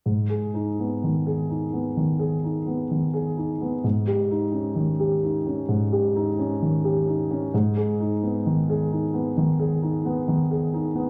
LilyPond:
\new Staff \with { instrumentName = "Grand piano" } { \time 4/4 \key gis \minor \tempo 4 = 65 gis,16 gis'16 dis'16 b16 dis16 gis'16 dis'16 b16 dis16 gis'16 dis'16 b16 dis16 gis'16 dis'16 b16 | gis,16 g'16 dis'16 cis'16 dis16 g'16 dis'16 cis'16 gis,16 g'16 dis'16 cis'16 dis16 g'16 dis'16 cis'16 | gis,16 gis'16 dis'16 b16 dis16 gis'16 dis'16 b16 dis16 gis'16 dis'16 b16 dis16 gis'16 dis'16 b16 | }